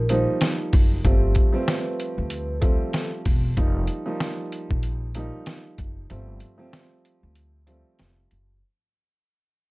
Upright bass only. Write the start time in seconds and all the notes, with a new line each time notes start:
Already playing: A#1
0.74 F#1
1.05 G1
2.18 D2
3.26 E1
3.58 F1
4.71 A#1
5.79 F#1
6.11 G1
7.23 D2
8.00 F1
8.32 F#1